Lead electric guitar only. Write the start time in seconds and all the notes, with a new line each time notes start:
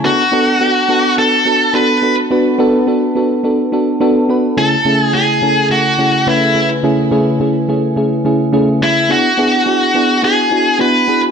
0.05 F#4
1.18 A4
1.75 B4
4.58 A4
5.00 G#4
5.14 G#4
5.72 F#4
6.29 E4
8.83 E4
9.12 F#4
10.24 G#4
10.81 B4